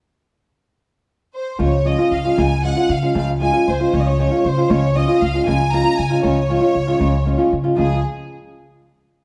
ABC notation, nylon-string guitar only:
X:1
M:6/8
L:1/16
Q:3/8=78
K:Db
V:1 name="Nylon-string guitar"
z12 | [D,F,A,DF] z [F,A,DF] [A,DF] z [A,DF] [D,F,A,DF] z [F,A,DF] [A,DF] z [A,DF] | [D,F,A,DF] z [F,A,DF] [A,DF] z [A,DF] [D,F,A,DF] z [F,A,DF] [A,DF] z [A,DF] | [D,F,A,DF] z [F,A,DF] [A,DF] z [A,DF] [D,F,A,DF] z [F,A,DF] [A,DF] z [A,DF] |
[D,F,A,DF] z [F,A,DF] [A,DF] z [A,DF] [D,F,A,DF] z [F,A,DF] [A,DF] z [A,DF] | [D,F,A,DF]2 z8 z2 |]